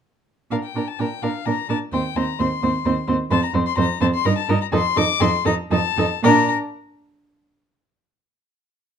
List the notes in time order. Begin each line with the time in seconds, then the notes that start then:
0.51 A#2 D4 A#4 F5
0.63 G5
0.75 A#2 D4 A#4
0.87 A5
0.99 A#2 D4 A#4 G5
1.22 A#2 D4 A#4 F5
1.46 A#2 D4 A#4 A#5
1.69 A#2 D4 A#4 A5
1.93 D#2 C4 C5 G5
2.16 D#2 C4 C5 A#5
2.39 D#2 C4 C5 C6
2.63 D#2 C4 C5
2.85 D#2 C4 C5
3.07 D#2 C4 C5
3.30 F2 C4 C5 A5
3.43 A#5
3.54 F2 C4 C5
3.66 C6
3.77 F2 C4 C5 A#5
4.01 F2 C4 C5 A5
4.14 C6
4.25 G2 D#4 A#4 A#5
4.38 A5
4.48 G2 D#4 A#4
4.61 A#5
4.72 F2 D#4 A4 C6
4.96 F2 D#4 A4 D6
5.20 F2 D#4 A4 C6
5.45 F2 D#4 A4 A#5
5.71 F2 D#4 A4 A5
5.97 F2 D#4 A4
6.23 A#2 D4 A#4 A#5